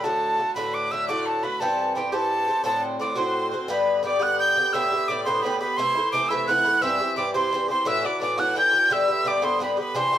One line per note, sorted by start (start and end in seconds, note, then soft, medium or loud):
0.04 0.40 A2 medium
0.04 0.40 D3 medium
0.04 0.39 A3 medium
0.04 0.37 F#4 medium
0.04 0.56 A4 medium
0.04 0.54 A5 loud
0.38 0.55 D3 soft
0.38 0.55 A3 soft
0.38 0.56 F#4 soft
0.55 0.90 A2 medium
0.55 0.90 D3 medium
0.55 0.92 A3 medium
0.55 0.92 F#4 medium
0.55 0.93 B4 medium
0.55 0.76 B5 loud
0.74 0.93 D6 medium
0.91 1.08 A2 soft
0.91 1.08 D3 medium
0.91 1.08 A3 medium
0.91 1.08 F#4 medium
0.91 1.10 E5 medium
0.91 1.08 E6 loud
1.08 1.45 A2 medium
1.08 1.44 D3 medium
1.08 1.43 A3 medium
1.08 1.42 F#4 medium
1.08 1.28 D5 medium
1.08 1.27 D6 medium
1.26 1.45 A4 medium
1.26 1.45 A5 medium
1.43 1.61 D3 soft
1.43 1.61 A3 medium
1.43 1.60 F#4 soft
1.43 1.60 B4 medium
1.43 1.62 B5 medium
1.60 1.94 G2 medium
1.60 1.95 E3 medium
1.60 1.96 C4 medium
1.60 1.96 G4 medium
1.60 1.98 A4 medium
1.60 1.96 A5 loud
1.95 2.13 G2 medium
1.95 2.12 E3 medium
1.95 2.11 C4 medium
1.95 2.15 G4 medium
1.95 2.11 G4 medium
1.95 2.15 G5 medium
2.12 2.48 G2 medium
2.12 2.48 E3 medium
2.12 2.48 C4 medium
2.12 2.46 G4 medium
2.12 2.64 A4 medium
2.12 2.64 A5 loud
2.48 2.64 E3 soft
2.48 2.64 C4 soft
2.48 2.65 G4 medium
2.64 2.98 A2 medium
2.64 3.00 D3 medium
2.64 3.00 C4 medium
2.64 3.00 F#4 medium
2.64 2.82 A4 medium
2.64 2.82 A5 medium
2.99 3.16 A2 medium
2.99 3.16 D3 medium
2.99 3.15 C4 medium
2.99 3.14 F#4 medium
2.99 3.08 D5 medium
2.99 3.20 D6 medium
3.15 3.53 A2 medium
3.15 3.54 D3 medium
3.15 3.52 C4 medium
3.15 3.50 F#4 medium
3.15 3.71 C5 medium
3.15 3.47 C6 loud
3.51 3.68 D3 soft
3.51 3.69 C4 medium
3.51 3.69 F#4 medium
3.68 4.02 G2 medium
3.68 4.02 D3 medium
3.68 4.03 B3 medium
3.68 4.04 G4 medium
3.68 4.04 B4 medium
3.68 4.03 B5 medium
4.03 4.21 G2 medium
4.03 4.20 D3 medium
4.03 4.19 B3 medium
4.03 4.18 G4 medium
4.03 4.22 D5 medium
4.03 4.24 D6 loud
4.19 4.57 G2 medium
4.19 4.57 D3 medium
4.19 4.56 B3 medium
4.19 4.55 G4 medium
4.19 4.41 F#5 medium
4.19 4.39 F#6 loud
4.39 4.76 G5 medium
4.39 4.75 G6 loud
4.56 4.73 D3 medium
4.56 4.73 B3 medium
4.56 4.73 G4 medium
4.73 4.92 A2 medium
4.73 4.92 D3 medium
4.73 4.92 B3 medium
4.73 4.91 G4 loud
4.73 5.11 E5 medium
4.73 5.10 E6 loud
4.92 5.08 D3 soft
4.92 5.09 B3 soft
4.92 5.09 G4 medium
5.08 5.26 A2 medium
5.08 5.26 D3 medium
5.08 5.26 B3 medium
5.08 5.25 G4 medium
5.08 5.28 D5 medium
5.08 5.24 D6 loud
5.25 5.42 A2 medium
5.25 5.43 D3 medium
5.25 5.44 B3 medium
5.25 5.44 G4 medium
5.25 5.46 C5 medium
5.25 5.44 C6 loud
5.42 5.61 A2 medium
5.42 5.61 D3 medium
5.42 5.61 B3 medium
5.42 5.59 G4 medium
5.42 5.61 B4 medium
5.42 5.59 B5 loud
5.60 5.78 D3 soft
5.60 5.79 B3 medium
5.60 5.78 G4 medium
5.60 5.80 B4 medium
5.60 5.78 B5 loud
5.77 5.96 C3 medium
5.77 5.97 E3 medium
5.77 5.96 A3 medium
5.77 5.94 E4 loud
5.77 6.32 C5 medium
5.77 6.11 C6 loud
5.95 6.12 E3 soft
5.95 6.13 A3 medium
5.95 6.13 E4 medium
6.12 6.30 C3 medium
6.12 6.30 E3 medium
6.12 6.30 A3 medium
6.12 6.29 E4 medium
6.12 6.30 D6 medium
6.29 6.46 C3 medium
6.29 6.48 E3 medium
6.29 6.49 A3 medium
6.29 6.49 E4 medium
6.29 6.51 E5 medium
6.29 6.47 E6 loud
6.47 6.65 C3 medium
6.47 6.66 E3 medium
6.47 6.65 A3 medium
6.47 6.63 E4 medium
6.47 6.84 F#5 loud
6.47 6.83 F#6 loud
6.65 6.81 E3 soft
6.65 6.82 A3 medium
6.65 6.82 E4 medium
6.81 7.00 G2 medium
6.81 7.00 E3 medium
6.81 7.00 C4 medium
6.81 6.98 G4 medium
6.81 7.19 E5 medium
6.81 7.16 E6 loud
7.00 7.16 E3 soft
7.00 7.17 C4 soft
7.00 7.17 G4 medium
7.16 7.34 G2 medium
7.16 7.34 E3 medium
7.16 7.33 C4 medium
7.16 7.33 G4 medium
7.16 7.34 D5 medium
7.16 7.33 D6 medium
7.34 7.51 G2 medium
7.34 7.51 E3 medium
7.34 7.53 C4 medium
7.34 7.53 G4 medium
7.34 7.67 C5 medium
7.34 7.67 C6 loud
7.52 7.69 G2 medium
7.52 7.70 E3 medium
7.52 7.68 C4 medium
7.52 7.67 G4 medium
7.68 7.85 E3 soft
7.68 7.86 C4 soft
7.68 7.86 G4 medium
7.68 7.86 C5 medium
7.68 7.89 C6 loud
7.85 8.04 A2 medium
7.85 8.05 E3 medium
7.85 8.04 D4 medium
7.85 8.01 F#4 medium
7.85 8.07 E5 medium
7.85 8.01 E6 loud
8.01 8.21 D4 soft
8.01 8.21 F#4 medium
8.01 8.20 D5 medium
8.01 8.07 E6 medium
8.06 8.20 E3 soft
8.06 8.22 D6 loud
8.20 8.38 A2 medium
8.20 8.37 E3 medium
8.20 8.37 D4 medium
8.20 8.36 F#4 medium
8.20 8.37 D5 medium
8.20 8.41 D6 medium
8.38 8.54 A2 medium
8.38 8.55 E3 medium
8.38 8.56 D4 medium
8.38 8.56 F#4 medium
8.38 8.58 F#5 medium
8.38 8.57 F#6 medium
8.55 8.73 A2 medium
8.55 8.73 E3 medium
8.55 8.72 D4 medium
8.55 8.70 F#4 medium
8.55 8.93 G5 medium
8.55 8.94 G6 loud
8.71 8.90 E3 soft
8.71 8.90 D4 medium
8.71 8.90 F#4 medium
8.90 9.08 G2 medium
8.90 9.09 D3 medium
8.90 9.08 B3 medium
8.90 9.07 G4 medium
8.90 9.09 E5 medium
8.90 9.29 E6 loud
9.08 9.24 D3 soft
9.08 9.25 B3 soft
9.08 9.25 G4 medium
9.08 9.28 E5 medium
9.24 9.42 G2 medium
9.24 9.41 D3 medium
9.24 9.41 B3 medium
9.24 9.41 G4 medium
9.24 9.44 D5 medium
9.24 9.46 D6 medium
9.42 9.58 G2 medium
9.42 9.59 D3 medium
9.42 9.60 B3 medium
9.42 9.61 G4 medium
9.42 9.61 C5 medium
9.42 9.62 C6 medium
9.59 9.77 G2 medium
9.59 9.78 D3 medium
9.59 9.77 B3 medium
9.59 9.76 G4 medium
9.59 9.77 B4 medium
9.59 9.77 B5 medium
9.77 9.95 D3 soft
9.77 9.95 B3 soft
9.77 9.94 G4 medium
9.77 9.98 B4 medium
9.77 9.97 B5 loud
9.95 10.13 C3 medium
9.95 10.13 E3 medium
9.95 10.12 D4 medium
9.95 10.11 G4 loud
9.95 10.18 C5 medium
9.95 10.18 C6 loud
10.12 10.18 E3 soft
10.12 10.18 D4 medium
10.12 10.18 G4 medium